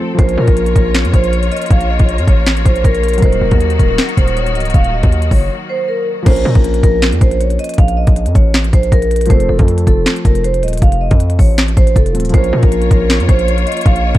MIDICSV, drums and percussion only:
0, 0, Header, 1, 2, 480
1, 0, Start_track
1, 0, Key_signature, -5, "minor"
1, 0, Tempo, 379747
1, 235, Time_signature, 4, 2, 24, 8
1, 17926, End_track
2, 0, Start_track
2, 0, Title_t, "Drums"
2, 235, Note_on_c, 9, 36, 117
2, 236, Note_on_c, 9, 42, 73
2, 362, Note_off_c, 9, 36, 0
2, 363, Note_off_c, 9, 42, 0
2, 363, Note_on_c, 9, 42, 57
2, 489, Note_off_c, 9, 42, 0
2, 600, Note_on_c, 9, 42, 54
2, 604, Note_on_c, 9, 36, 101
2, 717, Note_off_c, 9, 42, 0
2, 717, Note_on_c, 9, 42, 74
2, 730, Note_off_c, 9, 36, 0
2, 838, Note_off_c, 9, 42, 0
2, 838, Note_on_c, 9, 42, 61
2, 955, Note_on_c, 9, 36, 96
2, 959, Note_off_c, 9, 42, 0
2, 959, Note_on_c, 9, 42, 81
2, 1082, Note_off_c, 9, 36, 0
2, 1085, Note_off_c, 9, 42, 0
2, 1195, Note_on_c, 9, 38, 122
2, 1198, Note_on_c, 9, 42, 75
2, 1210, Note_on_c, 9, 26, 97
2, 1322, Note_off_c, 9, 38, 0
2, 1324, Note_off_c, 9, 42, 0
2, 1325, Note_on_c, 9, 42, 57
2, 1337, Note_off_c, 9, 26, 0
2, 1435, Note_on_c, 9, 36, 100
2, 1438, Note_off_c, 9, 42, 0
2, 1438, Note_on_c, 9, 42, 88
2, 1561, Note_off_c, 9, 36, 0
2, 1564, Note_off_c, 9, 42, 0
2, 1564, Note_on_c, 9, 42, 57
2, 1680, Note_off_c, 9, 42, 0
2, 1680, Note_on_c, 9, 42, 78
2, 1803, Note_off_c, 9, 42, 0
2, 1803, Note_on_c, 9, 42, 57
2, 1915, Note_off_c, 9, 42, 0
2, 1915, Note_on_c, 9, 42, 69
2, 1979, Note_off_c, 9, 42, 0
2, 1979, Note_on_c, 9, 42, 71
2, 2042, Note_off_c, 9, 42, 0
2, 2042, Note_on_c, 9, 42, 71
2, 2099, Note_off_c, 9, 42, 0
2, 2099, Note_on_c, 9, 42, 73
2, 2155, Note_on_c, 9, 36, 119
2, 2156, Note_off_c, 9, 42, 0
2, 2156, Note_on_c, 9, 42, 74
2, 2282, Note_off_c, 9, 36, 0
2, 2282, Note_off_c, 9, 42, 0
2, 2282, Note_on_c, 9, 42, 58
2, 2409, Note_off_c, 9, 42, 0
2, 2520, Note_on_c, 9, 42, 54
2, 2524, Note_on_c, 9, 36, 97
2, 2636, Note_off_c, 9, 42, 0
2, 2636, Note_on_c, 9, 42, 73
2, 2650, Note_off_c, 9, 36, 0
2, 2759, Note_off_c, 9, 42, 0
2, 2759, Note_on_c, 9, 42, 63
2, 2876, Note_on_c, 9, 36, 93
2, 2879, Note_off_c, 9, 42, 0
2, 2879, Note_on_c, 9, 42, 84
2, 3002, Note_off_c, 9, 36, 0
2, 3005, Note_off_c, 9, 42, 0
2, 3115, Note_on_c, 9, 38, 118
2, 3118, Note_on_c, 9, 42, 74
2, 3130, Note_on_c, 9, 26, 101
2, 3242, Note_off_c, 9, 38, 0
2, 3245, Note_off_c, 9, 42, 0
2, 3245, Note_on_c, 9, 42, 59
2, 3257, Note_off_c, 9, 26, 0
2, 3355, Note_on_c, 9, 36, 102
2, 3358, Note_off_c, 9, 42, 0
2, 3358, Note_on_c, 9, 42, 89
2, 3482, Note_off_c, 9, 36, 0
2, 3483, Note_off_c, 9, 42, 0
2, 3483, Note_on_c, 9, 42, 58
2, 3594, Note_on_c, 9, 36, 95
2, 3600, Note_off_c, 9, 42, 0
2, 3600, Note_on_c, 9, 42, 81
2, 3721, Note_off_c, 9, 36, 0
2, 3723, Note_off_c, 9, 42, 0
2, 3723, Note_on_c, 9, 42, 59
2, 3835, Note_off_c, 9, 42, 0
2, 3835, Note_on_c, 9, 42, 73
2, 3899, Note_off_c, 9, 42, 0
2, 3899, Note_on_c, 9, 42, 73
2, 3963, Note_off_c, 9, 42, 0
2, 3963, Note_on_c, 9, 42, 74
2, 4019, Note_off_c, 9, 42, 0
2, 4019, Note_on_c, 9, 42, 72
2, 4076, Note_off_c, 9, 42, 0
2, 4076, Note_on_c, 9, 36, 121
2, 4076, Note_on_c, 9, 42, 71
2, 4202, Note_off_c, 9, 36, 0
2, 4203, Note_off_c, 9, 42, 0
2, 4203, Note_on_c, 9, 42, 58
2, 4329, Note_off_c, 9, 42, 0
2, 4440, Note_on_c, 9, 42, 52
2, 4444, Note_on_c, 9, 36, 100
2, 4556, Note_off_c, 9, 42, 0
2, 4556, Note_on_c, 9, 42, 74
2, 4570, Note_off_c, 9, 36, 0
2, 4678, Note_off_c, 9, 42, 0
2, 4678, Note_on_c, 9, 42, 62
2, 4795, Note_on_c, 9, 36, 93
2, 4799, Note_off_c, 9, 42, 0
2, 4799, Note_on_c, 9, 42, 81
2, 4922, Note_off_c, 9, 36, 0
2, 4925, Note_off_c, 9, 42, 0
2, 5035, Note_on_c, 9, 38, 121
2, 5038, Note_on_c, 9, 42, 74
2, 5051, Note_on_c, 9, 26, 98
2, 5162, Note_off_c, 9, 38, 0
2, 5165, Note_off_c, 9, 42, 0
2, 5165, Note_on_c, 9, 42, 57
2, 5177, Note_off_c, 9, 26, 0
2, 5275, Note_on_c, 9, 36, 97
2, 5278, Note_off_c, 9, 42, 0
2, 5278, Note_on_c, 9, 42, 88
2, 5402, Note_off_c, 9, 36, 0
2, 5403, Note_off_c, 9, 42, 0
2, 5403, Note_on_c, 9, 42, 57
2, 5520, Note_off_c, 9, 42, 0
2, 5520, Note_on_c, 9, 42, 79
2, 5643, Note_off_c, 9, 42, 0
2, 5643, Note_on_c, 9, 42, 58
2, 5755, Note_off_c, 9, 42, 0
2, 5755, Note_on_c, 9, 42, 73
2, 5819, Note_off_c, 9, 42, 0
2, 5819, Note_on_c, 9, 42, 71
2, 5883, Note_off_c, 9, 42, 0
2, 5883, Note_on_c, 9, 42, 69
2, 5939, Note_off_c, 9, 42, 0
2, 5939, Note_on_c, 9, 42, 74
2, 5995, Note_on_c, 9, 36, 117
2, 5996, Note_off_c, 9, 42, 0
2, 5996, Note_on_c, 9, 42, 73
2, 6122, Note_off_c, 9, 36, 0
2, 6122, Note_off_c, 9, 42, 0
2, 6123, Note_on_c, 9, 42, 58
2, 6249, Note_off_c, 9, 42, 0
2, 6360, Note_on_c, 9, 42, 53
2, 6364, Note_on_c, 9, 36, 103
2, 6477, Note_off_c, 9, 42, 0
2, 6477, Note_on_c, 9, 42, 74
2, 6490, Note_off_c, 9, 36, 0
2, 6598, Note_off_c, 9, 42, 0
2, 6598, Note_on_c, 9, 42, 63
2, 6716, Note_on_c, 9, 36, 97
2, 6719, Note_on_c, 9, 46, 88
2, 6725, Note_off_c, 9, 42, 0
2, 6842, Note_off_c, 9, 36, 0
2, 6845, Note_off_c, 9, 46, 0
2, 7916, Note_on_c, 9, 36, 122
2, 7916, Note_on_c, 9, 49, 111
2, 7917, Note_on_c, 9, 42, 75
2, 8042, Note_off_c, 9, 36, 0
2, 8042, Note_off_c, 9, 49, 0
2, 8043, Note_off_c, 9, 42, 0
2, 8043, Note_on_c, 9, 42, 60
2, 8169, Note_off_c, 9, 42, 0
2, 8280, Note_on_c, 9, 42, 55
2, 8284, Note_on_c, 9, 36, 104
2, 8397, Note_off_c, 9, 42, 0
2, 8397, Note_on_c, 9, 42, 74
2, 8411, Note_off_c, 9, 36, 0
2, 8519, Note_off_c, 9, 42, 0
2, 8519, Note_on_c, 9, 42, 65
2, 8636, Note_on_c, 9, 36, 99
2, 8640, Note_off_c, 9, 42, 0
2, 8640, Note_on_c, 9, 42, 86
2, 8762, Note_off_c, 9, 36, 0
2, 8766, Note_off_c, 9, 42, 0
2, 8876, Note_on_c, 9, 38, 123
2, 8879, Note_on_c, 9, 42, 75
2, 8891, Note_on_c, 9, 26, 100
2, 9002, Note_off_c, 9, 38, 0
2, 9005, Note_off_c, 9, 42, 0
2, 9005, Note_on_c, 9, 42, 61
2, 9018, Note_off_c, 9, 26, 0
2, 9115, Note_on_c, 9, 36, 104
2, 9118, Note_off_c, 9, 42, 0
2, 9118, Note_on_c, 9, 42, 92
2, 9242, Note_off_c, 9, 36, 0
2, 9244, Note_off_c, 9, 42, 0
2, 9244, Note_on_c, 9, 42, 59
2, 9360, Note_off_c, 9, 42, 0
2, 9360, Note_on_c, 9, 42, 83
2, 9483, Note_off_c, 9, 42, 0
2, 9483, Note_on_c, 9, 42, 59
2, 9595, Note_off_c, 9, 42, 0
2, 9595, Note_on_c, 9, 42, 72
2, 9659, Note_off_c, 9, 42, 0
2, 9659, Note_on_c, 9, 42, 73
2, 9722, Note_off_c, 9, 42, 0
2, 9722, Note_on_c, 9, 42, 73
2, 9779, Note_off_c, 9, 42, 0
2, 9779, Note_on_c, 9, 42, 72
2, 9836, Note_off_c, 9, 42, 0
2, 9836, Note_on_c, 9, 36, 119
2, 9836, Note_on_c, 9, 42, 73
2, 9962, Note_off_c, 9, 36, 0
2, 9963, Note_off_c, 9, 42, 0
2, 9963, Note_on_c, 9, 42, 61
2, 10089, Note_off_c, 9, 42, 0
2, 10200, Note_on_c, 9, 42, 54
2, 10204, Note_on_c, 9, 36, 104
2, 10317, Note_off_c, 9, 42, 0
2, 10317, Note_on_c, 9, 42, 75
2, 10331, Note_off_c, 9, 36, 0
2, 10439, Note_off_c, 9, 42, 0
2, 10439, Note_on_c, 9, 42, 65
2, 10556, Note_on_c, 9, 36, 95
2, 10560, Note_off_c, 9, 42, 0
2, 10560, Note_on_c, 9, 42, 87
2, 10683, Note_off_c, 9, 36, 0
2, 10686, Note_off_c, 9, 42, 0
2, 10797, Note_on_c, 9, 38, 124
2, 10800, Note_on_c, 9, 42, 76
2, 10812, Note_on_c, 9, 26, 98
2, 10923, Note_off_c, 9, 38, 0
2, 10926, Note_off_c, 9, 42, 0
2, 10926, Note_on_c, 9, 42, 59
2, 10938, Note_off_c, 9, 26, 0
2, 11036, Note_on_c, 9, 36, 104
2, 11039, Note_off_c, 9, 42, 0
2, 11039, Note_on_c, 9, 42, 88
2, 11162, Note_off_c, 9, 36, 0
2, 11165, Note_off_c, 9, 42, 0
2, 11165, Note_on_c, 9, 42, 57
2, 11275, Note_on_c, 9, 36, 95
2, 11281, Note_off_c, 9, 42, 0
2, 11281, Note_on_c, 9, 42, 83
2, 11402, Note_off_c, 9, 36, 0
2, 11405, Note_off_c, 9, 42, 0
2, 11405, Note_on_c, 9, 42, 59
2, 11517, Note_off_c, 9, 42, 0
2, 11517, Note_on_c, 9, 42, 73
2, 11580, Note_off_c, 9, 42, 0
2, 11580, Note_on_c, 9, 42, 73
2, 11644, Note_off_c, 9, 42, 0
2, 11644, Note_on_c, 9, 42, 74
2, 11700, Note_off_c, 9, 42, 0
2, 11700, Note_on_c, 9, 42, 72
2, 11756, Note_on_c, 9, 36, 122
2, 11757, Note_off_c, 9, 42, 0
2, 11757, Note_on_c, 9, 42, 75
2, 11883, Note_off_c, 9, 36, 0
2, 11884, Note_off_c, 9, 42, 0
2, 11884, Note_on_c, 9, 42, 60
2, 12010, Note_off_c, 9, 42, 0
2, 12121, Note_on_c, 9, 42, 56
2, 12125, Note_on_c, 9, 36, 99
2, 12238, Note_off_c, 9, 42, 0
2, 12238, Note_on_c, 9, 42, 74
2, 12251, Note_off_c, 9, 36, 0
2, 12360, Note_off_c, 9, 42, 0
2, 12360, Note_on_c, 9, 42, 66
2, 12476, Note_on_c, 9, 36, 95
2, 12480, Note_off_c, 9, 42, 0
2, 12480, Note_on_c, 9, 42, 84
2, 12603, Note_off_c, 9, 36, 0
2, 12606, Note_off_c, 9, 42, 0
2, 12717, Note_on_c, 9, 38, 120
2, 12720, Note_on_c, 9, 42, 79
2, 12732, Note_on_c, 9, 26, 101
2, 12843, Note_off_c, 9, 38, 0
2, 12846, Note_off_c, 9, 42, 0
2, 12846, Note_on_c, 9, 42, 60
2, 12858, Note_off_c, 9, 26, 0
2, 12956, Note_on_c, 9, 36, 102
2, 12958, Note_off_c, 9, 42, 0
2, 12958, Note_on_c, 9, 42, 89
2, 13082, Note_off_c, 9, 36, 0
2, 13084, Note_off_c, 9, 42, 0
2, 13084, Note_on_c, 9, 42, 60
2, 13201, Note_off_c, 9, 42, 0
2, 13201, Note_on_c, 9, 42, 82
2, 13324, Note_off_c, 9, 42, 0
2, 13324, Note_on_c, 9, 42, 59
2, 13436, Note_off_c, 9, 42, 0
2, 13436, Note_on_c, 9, 42, 72
2, 13500, Note_off_c, 9, 42, 0
2, 13500, Note_on_c, 9, 42, 73
2, 13563, Note_off_c, 9, 42, 0
2, 13563, Note_on_c, 9, 42, 76
2, 13619, Note_off_c, 9, 42, 0
2, 13619, Note_on_c, 9, 42, 75
2, 13676, Note_off_c, 9, 42, 0
2, 13676, Note_on_c, 9, 36, 122
2, 13676, Note_on_c, 9, 42, 74
2, 13802, Note_off_c, 9, 36, 0
2, 13803, Note_off_c, 9, 42, 0
2, 13803, Note_on_c, 9, 42, 62
2, 13929, Note_off_c, 9, 42, 0
2, 14040, Note_on_c, 9, 42, 55
2, 14044, Note_on_c, 9, 36, 105
2, 14157, Note_off_c, 9, 42, 0
2, 14157, Note_on_c, 9, 42, 76
2, 14171, Note_off_c, 9, 36, 0
2, 14279, Note_off_c, 9, 42, 0
2, 14279, Note_on_c, 9, 42, 63
2, 14396, Note_on_c, 9, 36, 96
2, 14399, Note_on_c, 9, 46, 92
2, 14406, Note_off_c, 9, 42, 0
2, 14522, Note_off_c, 9, 36, 0
2, 14526, Note_off_c, 9, 46, 0
2, 14636, Note_on_c, 9, 38, 123
2, 14639, Note_on_c, 9, 42, 77
2, 14651, Note_on_c, 9, 26, 99
2, 14762, Note_off_c, 9, 38, 0
2, 14765, Note_off_c, 9, 42, 0
2, 14765, Note_on_c, 9, 42, 58
2, 14777, Note_off_c, 9, 26, 0
2, 14875, Note_on_c, 9, 36, 106
2, 14878, Note_off_c, 9, 42, 0
2, 14878, Note_on_c, 9, 42, 91
2, 15002, Note_off_c, 9, 36, 0
2, 15004, Note_off_c, 9, 42, 0
2, 15004, Note_on_c, 9, 42, 60
2, 15115, Note_on_c, 9, 36, 96
2, 15120, Note_off_c, 9, 42, 0
2, 15120, Note_on_c, 9, 42, 78
2, 15241, Note_off_c, 9, 36, 0
2, 15244, Note_off_c, 9, 42, 0
2, 15244, Note_on_c, 9, 42, 57
2, 15355, Note_off_c, 9, 42, 0
2, 15355, Note_on_c, 9, 42, 89
2, 15419, Note_off_c, 9, 42, 0
2, 15419, Note_on_c, 9, 42, 74
2, 15482, Note_off_c, 9, 42, 0
2, 15482, Note_on_c, 9, 42, 64
2, 15539, Note_off_c, 9, 42, 0
2, 15539, Note_on_c, 9, 42, 51
2, 15595, Note_on_c, 9, 36, 121
2, 15596, Note_off_c, 9, 42, 0
2, 15596, Note_on_c, 9, 42, 77
2, 15722, Note_off_c, 9, 36, 0
2, 15723, Note_off_c, 9, 42, 0
2, 15723, Note_on_c, 9, 42, 58
2, 15849, Note_off_c, 9, 42, 0
2, 15960, Note_on_c, 9, 42, 56
2, 15964, Note_on_c, 9, 36, 106
2, 16077, Note_off_c, 9, 42, 0
2, 16077, Note_on_c, 9, 42, 76
2, 16090, Note_off_c, 9, 36, 0
2, 16199, Note_off_c, 9, 42, 0
2, 16199, Note_on_c, 9, 42, 64
2, 16316, Note_on_c, 9, 36, 99
2, 16319, Note_off_c, 9, 42, 0
2, 16319, Note_on_c, 9, 42, 85
2, 16442, Note_off_c, 9, 36, 0
2, 16446, Note_off_c, 9, 42, 0
2, 16556, Note_on_c, 9, 38, 127
2, 16559, Note_on_c, 9, 42, 75
2, 16571, Note_on_c, 9, 26, 100
2, 16682, Note_off_c, 9, 38, 0
2, 16685, Note_off_c, 9, 42, 0
2, 16685, Note_on_c, 9, 42, 58
2, 16698, Note_off_c, 9, 26, 0
2, 16795, Note_on_c, 9, 36, 101
2, 16798, Note_off_c, 9, 42, 0
2, 16798, Note_on_c, 9, 42, 91
2, 16922, Note_off_c, 9, 36, 0
2, 16924, Note_off_c, 9, 42, 0
2, 16924, Note_on_c, 9, 42, 59
2, 17040, Note_off_c, 9, 42, 0
2, 17040, Note_on_c, 9, 42, 83
2, 17163, Note_off_c, 9, 42, 0
2, 17163, Note_on_c, 9, 42, 58
2, 17275, Note_off_c, 9, 42, 0
2, 17275, Note_on_c, 9, 42, 73
2, 17339, Note_off_c, 9, 42, 0
2, 17339, Note_on_c, 9, 42, 72
2, 17402, Note_off_c, 9, 42, 0
2, 17402, Note_on_c, 9, 42, 71
2, 17459, Note_off_c, 9, 42, 0
2, 17459, Note_on_c, 9, 42, 74
2, 17515, Note_on_c, 9, 36, 121
2, 17516, Note_off_c, 9, 42, 0
2, 17516, Note_on_c, 9, 42, 74
2, 17642, Note_off_c, 9, 36, 0
2, 17642, Note_off_c, 9, 42, 0
2, 17642, Note_on_c, 9, 42, 59
2, 17769, Note_off_c, 9, 42, 0
2, 17880, Note_on_c, 9, 42, 54
2, 17884, Note_on_c, 9, 36, 104
2, 17926, Note_off_c, 9, 36, 0
2, 17926, Note_off_c, 9, 42, 0
2, 17926, End_track
0, 0, End_of_file